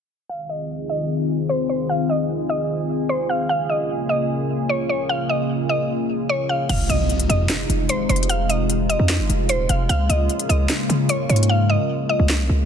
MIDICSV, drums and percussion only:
0, 0, Header, 1, 2, 480
1, 0, Start_track
1, 0, Key_signature, -4, "minor"
1, 0, Tempo, 400000
1, 353, Time_signature, 4, 2, 24, 8
1, 15184, End_track
2, 0, Start_track
2, 0, Title_t, "Drums"
2, 8034, Note_on_c, 9, 42, 89
2, 8034, Note_on_c, 9, 49, 102
2, 8154, Note_off_c, 9, 42, 0
2, 8154, Note_off_c, 9, 49, 0
2, 8277, Note_on_c, 9, 42, 80
2, 8397, Note_off_c, 9, 42, 0
2, 8514, Note_on_c, 9, 42, 44
2, 8634, Note_off_c, 9, 42, 0
2, 8634, Note_on_c, 9, 42, 80
2, 8754, Note_off_c, 9, 42, 0
2, 8757, Note_on_c, 9, 42, 81
2, 8877, Note_off_c, 9, 42, 0
2, 8993, Note_on_c, 9, 42, 84
2, 8994, Note_on_c, 9, 38, 118
2, 9113, Note_off_c, 9, 42, 0
2, 9114, Note_off_c, 9, 38, 0
2, 9237, Note_on_c, 9, 42, 81
2, 9357, Note_off_c, 9, 42, 0
2, 9470, Note_on_c, 9, 42, 89
2, 9590, Note_off_c, 9, 42, 0
2, 9714, Note_on_c, 9, 42, 51
2, 9793, Note_off_c, 9, 42, 0
2, 9793, Note_on_c, 9, 42, 68
2, 9874, Note_off_c, 9, 42, 0
2, 9874, Note_on_c, 9, 42, 88
2, 9954, Note_off_c, 9, 42, 0
2, 9954, Note_on_c, 9, 42, 92
2, 10074, Note_off_c, 9, 42, 0
2, 10195, Note_on_c, 9, 42, 79
2, 10315, Note_off_c, 9, 42, 0
2, 10435, Note_on_c, 9, 42, 73
2, 10555, Note_off_c, 9, 42, 0
2, 10676, Note_on_c, 9, 42, 81
2, 10796, Note_off_c, 9, 42, 0
2, 10912, Note_on_c, 9, 42, 92
2, 10913, Note_on_c, 9, 38, 117
2, 11032, Note_off_c, 9, 42, 0
2, 11033, Note_off_c, 9, 38, 0
2, 11156, Note_on_c, 9, 42, 81
2, 11276, Note_off_c, 9, 42, 0
2, 11389, Note_on_c, 9, 42, 92
2, 11509, Note_off_c, 9, 42, 0
2, 11631, Note_on_c, 9, 42, 80
2, 11751, Note_off_c, 9, 42, 0
2, 11874, Note_on_c, 9, 42, 89
2, 11994, Note_off_c, 9, 42, 0
2, 12116, Note_on_c, 9, 42, 81
2, 12236, Note_off_c, 9, 42, 0
2, 12354, Note_on_c, 9, 42, 46
2, 12474, Note_off_c, 9, 42, 0
2, 12474, Note_on_c, 9, 42, 81
2, 12594, Note_off_c, 9, 42, 0
2, 12597, Note_on_c, 9, 42, 78
2, 12717, Note_off_c, 9, 42, 0
2, 12833, Note_on_c, 9, 42, 85
2, 12834, Note_on_c, 9, 38, 121
2, 12953, Note_off_c, 9, 42, 0
2, 12954, Note_off_c, 9, 38, 0
2, 13077, Note_on_c, 9, 42, 80
2, 13197, Note_off_c, 9, 42, 0
2, 13310, Note_on_c, 9, 42, 91
2, 13430, Note_off_c, 9, 42, 0
2, 13554, Note_on_c, 9, 42, 49
2, 13634, Note_off_c, 9, 42, 0
2, 13634, Note_on_c, 9, 42, 65
2, 13714, Note_off_c, 9, 42, 0
2, 13714, Note_on_c, 9, 42, 85
2, 13834, Note_off_c, 9, 42, 0
2, 14754, Note_on_c, 9, 38, 117
2, 14874, Note_off_c, 9, 38, 0
2, 15184, End_track
0, 0, End_of_file